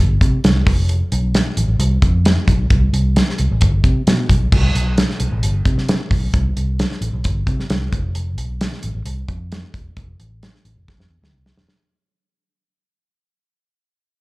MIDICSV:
0, 0, Header, 1, 3, 480
1, 0, Start_track
1, 0, Key_signature, 0, "major"
1, 0, Tempo, 453858
1, 945, Time_signature, 4, 2, 24, 8
1, 15025, End_track
2, 0, Start_track
2, 0, Title_t, "Fingered electric bass"
2, 0, Program_c, 0, 33
2, 0, Note_on_c, 0, 31, 103
2, 172, Note_off_c, 0, 31, 0
2, 224, Note_on_c, 0, 48, 92
2, 407, Note_off_c, 0, 48, 0
2, 470, Note_on_c, 0, 36, 89
2, 650, Note_off_c, 0, 36, 0
2, 704, Note_on_c, 0, 29, 102
2, 1069, Note_off_c, 0, 29, 0
2, 1185, Note_on_c, 0, 35, 98
2, 1458, Note_off_c, 0, 35, 0
2, 1661, Note_on_c, 0, 33, 93
2, 1753, Note_off_c, 0, 33, 0
2, 1779, Note_on_c, 0, 33, 83
2, 1872, Note_off_c, 0, 33, 0
2, 1895, Note_on_c, 0, 36, 92
2, 2080, Note_off_c, 0, 36, 0
2, 2139, Note_on_c, 0, 41, 97
2, 2505, Note_off_c, 0, 41, 0
2, 2622, Note_on_c, 0, 35, 97
2, 2805, Note_off_c, 0, 35, 0
2, 2861, Note_on_c, 0, 36, 103
2, 3044, Note_off_c, 0, 36, 0
2, 3099, Note_on_c, 0, 36, 97
2, 3373, Note_off_c, 0, 36, 0
2, 3589, Note_on_c, 0, 36, 87
2, 3678, Note_off_c, 0, 36, 0
2, 3715, Note_on_c, 0, 33, 86
2, 3802, Note_off_c, 0, 33, 0
2, 3826, Note_on_c, 0, 31, 84
2, 4007, Note_off_c, 0, 31, 0
2, 4058, Note_on_c, 0, 48, 94
2, 4242, Note_off_c, 0, 48, 0
2, 4308, Note_on_c, 0, 47, 92
2, 4488, Note_off_c, 0, 47, 0
2, 4543, Note_on_c, 0, 35, 84
2, 4725, Note_off_c, 0, 35, 0
2, 4785, Note_on_c, 0, 36, 99
2, 4966, Note_off_c, 0, 36, 0
2, 5023, Note_on_c, 0, 35, 92
2, 5296, Note_off_c, 0, 35, 0
2, 5503, Note_on_c, 0, 35, 96
2, 5593, Note_off_c, 0, 35, 0
2, 5624, Note_on_c, 0, 33, 84
2, 5714, Note_off_c, 0, 33, 0
2, 5737, Note_on_c, 0, 31, 95
2, 5920, Note_off_c, 0, 31, 0
2, 5981, Note_on_c, 0, 48, 99
2, 6345, Note_off_c, 0, 48, 0
2, 6461, Note_on_c, 0, 35, 91
2, 6643, Note_off_c, 0, 35, 0
2, 6701, Note_on_c, 0, 36, 102
2, 6883, Note_off_c, 0, 36, 0
2, 6945, Note_on_c, 0, 36, 94
2, 7217, Note_off_c, 0, 36, 0
2, 7415, Note_on_c, 0, 33, 89
2, 7508, Note_off_c, 0, 33, 0
2, 7542, Note_on_c, 0, 35, 89
2, 7633, Note_off_c, 0, 35, 0
2, 7669, Note_on_c, 0, 31, 94
2, 7848, Note_off_c, 0, 31, 0
2, 7895, Note_on_c, 0, 48, 100
2, 8080, Note_off_c, 0, 48, 0
2, 8145, Note_on_c, 0, 36, 85
2, 8326, Note_off_c, 0, 36, 0
2, 8383, Note_on_c, 0, 29, 97
2, 8865, Note_off_c, 0, 29, 0
2, 8865, Note_on_c, 0, 35, 89
2, 9137, Note_off_c, 0, 35, 0
2, 9347, Note_on_c, 0, 33, 87
2, 9437, Note_off_c, 0, 33, 0
2, 9463, Note_on_c, 0, 33, 73
2, 9554, Note_off_c, 0, 33, 0
2, 9574, Note_on_c, 0, 36, 89
2, 9760, Note_off_c, 0, 36, 0
2, 9819, Note_on_c, 0, 41, 92
2, 10185, Note_off_c, 0, 41, 0
2, 10300, Note_on_c, 0, 28, 90
2, 10484, Note_off_c, 0, 28, 0
2, 10544, Note_on_c, 0, 29, 95
2, 10726, Note_off_c, 0, 29, 0
2, 10783, Note_on_c, 0, 33, 84
2, 11057, Note_off_c, 0, 33, 0
2, 11263, Note_on_c, 0, 33, 89
2, 11355, Note_off_c, 0, 33, 0
2, 11380, Note_on_c, 0, 29, 78
2, 11473, Note_off_c, 0, 29, 0
2, 11619, Note_on_c, 0, 41, 88
2, 11713, Note_off_c, 0, 41, 0
2, 11742, Note_on_c, 0, 40, 83
2, 11834, Note_off_c, 0, 40, 0
2, 11865, Note_on_c, 0, 38, 78
2, 11957, Note_off_c, 0, 38, 0
2, 11987, Note_on_c, 0, 36, 91
2, 12169, Note_off_c, 0, 36, 0
2, 12225, Note_on_c, 0, 28, 89
2, 12317, Note_off_c, 0, 28, 0
2, 15025, End_track
3, 0, Start_track
3, 0, Title_t, "Drums"
3, 223, Note_on_c, 9, 36, 81
3, 234, Note_on_c, 9, 42, 60
3, 329, Note_off_c, 9, 36, 0
3, 340, Note_off_c, 9, 42, 0
3, 466, Note_on_c, 9, 42, 85
3, 473, Note_on_c, 9, 38, 118
3, 571, Note_off_c, 9, 42, 0
3, 579, Note_off_c, 9, 38, 0
3, 705, Note_on_c, 9, 36, 105
3, 716, Note_on_c, 9, 46, 55
3, 811, Note_off_c, 9, 36, 0
3, 822, Note_off_c, 9, 46, 0
3, 943, Note_on_c, 9, 42, 74
3, 1049, Note_off_c, 9, 42, 0
3, 1183, Note_on_c, 9, 42, 77
3, 1289, Note_off_c, 9, 42, 0
3, 1423, Note_on_c, 9, 42, 84
3, 1428, Note_on_c, 9, 38, 100
3, 1528, Note_off_c, 9, 42, 0
3, 1533, Note_off_c, 9, 38, 0
3, 1661, Note_on_c, 9, 42, 68
3, 1766, Note_off_c, 9, 42, 0
3, 1900, Note_on_c, 9, 42, 93
3, 2006, Note_off_c, 9, 42, 0
3, 2139, Note_on_c, 9, 36, 88
3, 2143, Note_on_c, 9, 42, 61
3, 2245, Note_off_c, 9, 36, 0
3, 2249, Note_off_c, 9, 42, 0
3, 2384, Note_on_c, 9, 42, 87
3, 2391, Note_on_c, 9, 38, 126
3, 2489, Note_off_c, 9, 42, 0
3, 2497, Note_off_c, 9, 38, 0
3, 2620, Note_on_c, 9, 36, 94
3, 2630, Note_on_c, 9, 42, 74
3, 2725, Note_off_c, 9, 36, 0
3, 2735, Note_off_c, 9, 42, 0
3, 2859, Note_on_c, 9, 42, 75
3, 2861, Note_on_c, 9, 36, 116
3, 2964, Note_off_c, 9, 42, 0
3, 2967, Note_off_c, 9, 36, 0
3, 3106, Note_on_c, 9, 42, 77
3, 3211, Note_off_c, 9, 42, 0
3, 3345, Note_on_c, 9, 42, 89
3, 3350, Note_on_c, 9, 38, 98
3, 3451, Note_off_c, 9, 42, 0
3, 3455, Note_off_c, 9, 38, 0
3, 3479, Note_on_c, 9, 38, 33
3, 3579, Note_on_c, 9, 42, 70
3, 3585, Note_off_c, 9, 38, 0
3, 3685, Note_off_c, 9, 42, 0
3, 3816, Note_on_c, 9, 42, 90
3, 3827, Note_on_c, 9, 36, 87
3, 3922, Note_off_c, 9, 42, 0
3, 3933, Note_off_c, 9, 36, 0
3, 4060, Note_on_c, 9, 36, 83
3, 4068, Note_on_c, 9, 42, 54
3, 4166, Note_off_c, 9, 36, 0
3, 4174, Note_off_c, 9, 42, 0
3, 4304, Note_on_c, 9, 42, 86
3, 4312, Note_on_c, 9, 38, 124
3, 4410, Note_off_c, 9, 42, 0
3, 4418, Note_off_c, 9, 38, 0
3, 4542, Note_on_c, 9, 36, 92
3, 4552, Note_on_c, 9, 42, 78
3, 4648, Note_off_c, 9, 36, 0
3, 4658, Note_off_c, 9, 42, 0
3, 4784, Note_on_c, 9, 36, 109
3, 4785, Note_on_c, 9, 49, 92
3, 4890, Note_off_c, 9, 36, 0
3, 4891, Note_off_c, 9, 49, 0
3, 5028, Note_on_c, 9, 42, 81
3, 5134, Note_off_c, 9, 42, 0
3, 5262, Note_on_c, 9, 42, 86
3, 5267, Note_on_c, 9, 38, 104
3, 5368, Note_off_c, 9, 42, 0
3, 5373, Note_off_c, 9, 38, 0
3, 5392, Note_on_c, 9, 38, 33
3, 5496, Note_on_c, 9, 42, 67
3, 5498, Note_off_c, 9, 38, 0
3, 5602, Note_off_c, 9, 42, 0
3, 5742, Note_on_c, 9, 42, 92
3, 5848, Note_off_c, 9, 42, 0
3, 5980, Note_on_c, 9, 36, 80
3, 5987, Note_on_c, 9, 42, 60
3, 6086, Note_off_c, 9, 36, 0
3, 6093, Note_off_c, 9, 42, 0
3, 6112, Note_on_c, 9, 38, 37
3, 6218, Note_off_c, 9, 38, 0
3, 6224, Note_on_c, 9, 42, 83
3, 6232, Note_on_c, 9, 38, 120
3, 6330, Note_off_c, 9, 42, 0
3, 6338, Note_off_c, 9, 38, 0
3, 6460, Note_on_c, 9, 36, 94
3, 6470, Note_on_c, 9, 46, 54
3, 6566, Note_off_c, 9, 36, 0
3, 6576, Note_off_c, 9, 46, 0
3, 6701, Note_on_c, 9, 42, 73
3, 6703, Note_on_c, 9, 36, 110
3, 6807, Note_off_c, 9, 42, 0
3, 6808, Note_off_c, 9, 36, 0
3, 6946, Note_on_c, 9, 42, 75
3, 7051, Note_off_c, 9, 42, 0
3, 7185, Note_on_c, 9, 42, 81
3, 7190, Note_on_c, 9, 38, 99
3, 7291, Note_off_c, 9, 42, 0
3, 7296, Note_off_c, 9, 38, 0
3, 7314, Note_on_c, 9, 38, 31
3, 7420, Note_off_c, 9, 38, 0
3, 7422, Note_on_c, 9, 42, 67
3, 7527, Note_off_c, 9, 42, 0
3, 7659, Note_on_c, 9, 42, 88
3, 7668, Note_on_c, 9, 36, 86
3, 7765, Note_off_c, 9, 42, 0
3, 7774, Note_off_c, 9, 36, 0
3, 7899, Note_on_c, 9, 36, 84
3, 7902, Note_on_c, 9, 42, 58
3, 8005, Note_off_c, 9, 36, 0
3, 8008, Note_off_c, 9, 42, 0
3, 8033, Note_on_c, 9, 38, 38
3, 8138, Note_off_c, 9, 38, 0
3, 8141, Note_on_c, 9, 42, 87
3, 8148, Note_on_c, 9, 38, 120
3, 8246, Note_off_c, 9, 42, 0
3, 8254, Note_off_c, 9, 38, 0
3, 8382, Note_on_c, 9, 36, 108
3, 8388, Note_on_c, 9, 42, 77
3, 8488, Note_off_c, 9, 36, 0
3, 8494, Note_off_c, 9, 42, 0
3, 8620, Note_on_c, 9, 42, 73
3, 8725, Note_off_c, 9, 42, 0
3, 8861, Note_on_c, 9, 42, 72
3, 8967, Note_off_c, 9, 42, 0
3, 9104, Note_on_c, 9, 42, 86
3, 9109, Note_on_c, 9, 38, 100
3, 9210, Note_off_c, 9, 42, 0
3, 9215, Note_off_c, 9, 38, 0
3, 9231, Note_on_c, 9, 38, 34
3, 9335, Note_on_c, 9, 42, 68
3, 9336, Note_off_c, 9, 38, 0
3, 9441, Note_off_c, 9, 42, 0
3, 9577, Note_on_c, 9, 42, 88
3, 9683, Note_off_c, 9, 42, 0
3, 9820, Note_on_c, 9, 36, 78
3, 9824, Note_on_c, 9, 42, 56
3, 9925, Note_off_c, 9, 36, 0
3, 9930, Note_off_c, 9, 42, 0
3, 10065, Note_on_c, 9, 42, 88
3, 10073, Note_on_c, 9, 38, 113
3, 10171, Note_off_c, 9, 42, 0
3, 10179, Note_off_c, 9, 38, 0
3, 10301, Note_on_c, 9, 36, 88
3, 10310, Note_on_c, 9, 42, 75
3, 10407, Note_off_c, 9, 36, 0
3, 10416, Note_off_c, 9, 42, 0
3, 10541, Note_on_c, 9, 42, 74
3, 10542, Note_on_c, 9, 36, 105
3, 10647, Note_off_c, 9, 42, 0
3, 10648, Note_off_c, 9, 36, 0
3, 10784, Note_on_c, 9, 42, 72
3, 10890, Note_off_c, 9, 42, 0
3, 11027, Note_on_c, 9, 42, 79
3, 11032, Note_on_c, 9, 38, 96
3, 11133, Note_off_c, 9, 42, 0
3, 11138, Note_off_c, 9, 38, 0
3, 11160, Note_on_c, 9, 38, 31
3, 11265, Note_off_c, 9, 38, 0
3, 11265, Note_on_c, 9, 42, 67
3, 11371, Note_off_c, 9, 42, 0
3, 11510, Note_on_c, 9, 36, 88
3, 11515, Note_on_c, 9, 38, 52
3, 11616, Note_off_c, 9, 36, 0
3, 11621, Note_off_c, 9, 38, 0
3, 11637, Note_on_c, 9, 38, 55
3, 11743, Note_off_c, 9, 38, 0
3, 11884, Note_on_c, 9, 38, 65
3, 11989, Note_off_c, 9, 38, 0
3, 12122, Note_on_c, 9, 38, 80
3, 12227, Note_off_c, 9, 38, 0
3, 12242, Note_on_c, 9, 38, 95
3, 12348, Note_off_c, 9, 38, 0
3, 12358, Note_on_c, 9, 38, 82
3, 12464, Note_off_c, 9, 38, 0
3, 15025, End_track
0, 0, End_of_file